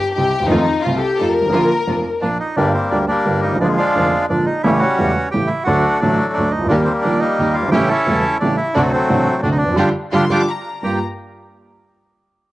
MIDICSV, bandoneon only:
0, 0, Header, 1, 2, 480
1, 0, Start_track
1, 0, Key_signature, -2, "minor"
1, 0, Tempo, 344037
1, 693, Time_signature, 3, 2, 24, 8
1, 17468, End_track
2, 0, Start_track
2, 0, Title_t, "Bandoneon"
2, 0, Program_c, 0, 23
2, 3087, Note_on_c, 0, 62, 83
2, 3319, Note_off_c, 0, 62, 0
2, 3344, Note_on_c, 0, 63, 78
2, 3569, Note_off_c, 0, 63, 0
2, 3569, Note_on_c, 0, 62, 88
2, 3585, Note_on_c, 0, 55, 62
2, 3585, Note_on_c, 0, 58, 65
2, 3802, Note_off_c, 0, 62, 0
2, 3818, Note_on_c, 0, 60, 75
2, 4047, Note_off_c, 0, 60, 0
2, 4051, Note_on_c, 0, 62, 84
2, 4164, Note_off_c, 0, 62, 0
2, 4260, Note_off_c, 0, 55, 0
2, 4260, Note_off_c, 0, 58, 0
2, 4297, Note_on_c, 0, 62, 88
2, 4315, Note_on_c, 0, 55, 62
2, 4320, Note_on_c, 0, 58, 63
2, 4752, Note_off_c, 0, 62, 0
2, 4770, Note_on_c, 0, 63, 85
2, 4984, Note_off_c, 0, 55, 0
2, 4987, Note_off_c, 0, 58, 0
2, 5004, Note_off_c, 0, 63, 0
2, 5028, Note_on_c, 0, 62, 87
2, 5047, Note_on_c, 0, 53, 70
2, 5057, Note_on_c, 0, 56, 66
2, 5137, Note_off_c, 0, 62, 0
2, 5257, Note_off_c, 0, 56, 0
2, 5262, Note_on_c, 0, 65, 99
2, 5278, Note_on_c, 0, 56, 72
2, 5284, Note_on_c, 0, 62, 73
2, 5709, Note_off_c, 0, 53, 0
2, 5936, Note_off_c, 0, 65, 0
2, 5945, Note_off_c, 0, 56, 0
2, 5948, Note_off_c, 0, 62, 0
2, 5992, Note_on_c, 0, 62, 88
2, 6215, Note_off_c, 0, 62, 0
2, 6216, Note_on_c, 0, 63, 84
2, 6446, Note_off_c, 0, 63, 0
2, 6453, Note_on_c, 0, 64, 101
2, 6486, Note_on_c, 0, 55, 74
2, 6490, Note_on_c, 0, 61, 72
2, 6564, Note_off_c, 0, 64, 0
2, 6683, Note_on_c, 0, 66, 99
2, 6701, Note_off_c, 0, 61, 0
2, 6722, Note_on_c, 0, 61, 74
2, 7145, Note_off_c, 0, 55, 0
2, 7359, Note_off_c, 0, 66, 0
2, 7380, Note_off_c, 0, 61, 0
2, 7411, Note_on_c, 0, 67, 100
2, 7630, Note_on_c, 0, 64, 89
2, 7662, Note_off_c, 0, 67, 0
2, 7866, Note_off_c, 0, 64, 0
2, 7866, Note_on_c, 0, 66, 101
2, 7903, Note_on_c, 0, 57, 71
2, 7905, Note_on_c, 0, 62, 77
2, 8349, Note_off_c, 0, 62, 0
2, 8370, Note_on_c, 0, 62, 95
2, 8378, Note_off_c, 0, 66, 0
2, 8382, Note_off_c, 0, 57, 0
2, 8403, Note_on_c, 0, 57, 66
2, 8405, Note_on_c, 0, 54, 68
2, 8818, Note_off_c, 0, 62, 0
2, 8839, Note_on_c, 0, 62, 88
2, 9066, Note_off_c, 0, 57, 0
2, 9067, Note_off_c, 0, 54, 0
2, 9076, Note_on_c, 0, 63, 83
2, 9100, Note_off_c, 0, 62, 0
2, 9314, Note_off_c, 0, 63, 0
2, 9319, Note_on_c, 0, 62, 92
2, 9354, Note_on_c, 0, 58, 68
2, 9358, Note_on_c, 0, 55, 69
2, 9434, Note_off_c, 0, 62, 0
2, 9552, Note_on_c, 0, 60, 86
2, 9668, Note_off_c, 0, 60, 0
2, 9781, Note_on_c, 0, 62, 90
2, 10021, Note_off_c, 0, 58, 0
2, 10023, Note_off_c, 0, 55, 0
2, 10033, Note_on_c, 0, 63, 95
2, 10052, Note_off_c, 0, 62, 0
2, 10068, Note_on_c, 0, 55, 69
2, 10069, Note_on_c, 0, 58, 69
2, 10513, Note_on_c, 0, 65, 92
2, 10541, Note_off_c, 0, 63, 0
2, 10732, Note_off_c, 0, 55, 0
2, 10732, Note_off_c, 0, 58, 0
2, 10749, Note_off_c, 0, 65, 0
2, 10757, Note_on_c, 0, 67, 112
2, 10785, Note_on_c, 0, 61, 75
2, 10788, Note_on_c, 0, 64, 82
2, 10999, Note_on_c, 0, 69, 113
2, 11006, Note_off_c, 0, 64, 0
2, 11007, Note_off_c, 0, 61, 0
2, 11015, Note_off_c, 0, 67, 0
2, 11027, Note_on_c, 0, 64, 79
2, 11028, Note_on_c, 0, 61, 81
2, 11674, Note_off_c, 0, 69, 0
2, 11689, Note_off_c, 0, 61, 0
2, 11689, Note_off_c, 0, 64, 0
2, 11724, Note_on_c, 0, 62, 92
2, 11950, Note_off_c, 0, 62, 0
2, 11953, Note_on_c, 0, 64, 98
2, 12196, Note_on_c, 0, 62, 104
2, 12207, Note_off_c, 0, 64, 0
2, 12221, Note_on_c, 0, 54, 77
2, 12221, Note_on_c, 0, 57, 74
2, 12306, Note_off_c, 0, 62, 0
2, 12448, Note_on_c, 0, 60, 101
2, 12452, Note_off_c, 0, 54, 0
2, 12453, Note_off_c, 0, 57, 0
2, 12473, Note_on_c, 0, 54, 77
2, 12473, Note_on_c, 0, 57, 72
2, 13116, Note_off_c, 0, 60, 0
2, 13129, Note_off_c, 0, 54, 0
2, 13129, Note_off_c, 0, 57, 0
2, 13147, Note_on_c, 0, 62, 97
2, 13246, Note_off_c, 0, 62, 0
2, 13270, Note_on_c, 0, 63, 81
2, 13355, Note_on_c, 0, 62, 97
2, 13363, Note_off_c, 0, 63, 0
2, 13623, Note_off_c, 0, 62, 0
2, 13652, Note_on_c, 0, 67, 96
2, 13653, Note_on_c, 0, 62, 98
2, 13656, Note_on_c, 0, 65, 94
2, 13803, Note_off_c, 0, 67, 0
2, 13804, Note_off_c, 0, 62, 0
2, 13805, Note_off_c, 0, 65, 0
2, 14151, Note_on_c, 0, 65, 95
2, 14156, Note_on_c, 0, 62, 95
2, 14158, Note_on_c, 0, 67, 96
2, 14297, Note_off_c, 0, 65, 0
2, 14300, Note_off_c, 0, 62, 0
2, 14301, Note_off_c, 0, 67, 0
2, 14387, Note_on_c, 0, 62, 93
2, 14392, Note_on_c, 0, 67, 91
2, 14397, Note_on_c, 0, 65, 90
2, 14536, Note_off_c, 0, 62, 0
2, 14539, Note_off_c, 0, 67, 0
2, 14542, Note_off_c, 0, 65, 0
2, 15118, Note_on_c, 0, 67, 83
2, 15333, Note_off_c, 0, 67, 0
2, 17468, End_track
0, 0, End_of_file